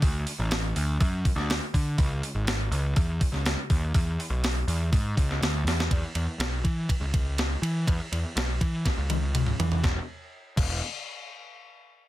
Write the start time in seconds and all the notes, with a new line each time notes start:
0.02 D2, kick, open hi-hat
0.27 open hi-hat
0.39 A1
0.51 snare, open hi-hat
0.76 D2, open hi-hat
1.00 F#2, kick, open hi-hat
1.25 kick, open hi-hat
1.36 D2, snare
1.50 snare, open hi-hat
1.74 D3, kick, open hi-hat
1.98 C#2, kick, open hi-hat
2.23 open hi-hat
2.34 G#1
2.47 snare, open hi-hat
2.71 C#2, open hi-hat
2.96 E2, kick, open hi-hat
3.21 kick, open hi-hat
3.32 C#2, snare
3.46 snare, open hi-hat
3.70 D#2, kick, open hi-hat
3.94 E2, kick, open hi-hat
4.20 open hi-hat
4.30 B1
4.44 snare, open hi-hat
4.67 E2, open hi-hat
4.92 G#2, kick, open hi-hat
5.17 C#2, kick, open hi-hat
5.31 snare
5.41 D2, snare, open hi-hat
5.65 E2, snare, open hi-hat
5.80 snare
5.91 E2, kick, ride
6.15 E2, ride
6.39 B1, snare, ride
6.64 E3, kick, ride
6.89 kick, ride
7.01 C#2
7.14 kick, ride
7.38 snare, ride
7.62 E3, ride
7.87 E2, kick, ride
8.12 E2, ride
8.36 B1, snare, ride
8.61 E3, kick, ride
8.85 kick, snare, ride
8.98 C#2
9.10 high tom, ride
9.35 mid tom, ride
9.46 mid tom
9.60 E3, floor tom, ride
9.72 floor tom
9.83 E1, kick, snare
10.57 E1, kick, crash